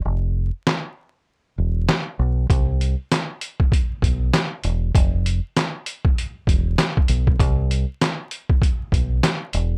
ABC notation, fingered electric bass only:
X:1
M:4/4
L:1/16
Q:"Swing 16ths" 1/4=98
K:C
V:1 name="Fingered electric bass" clef=bass
F,,,3 z6 z E,,,2 z2 B,,,2 | C,,3 z6 z B,,,2 z2 E,,,2 | F,,,3 z6 z E,,,2 z2 B,,,2 | C,,3 z6 z B,,,2 z2 E,,,2 |]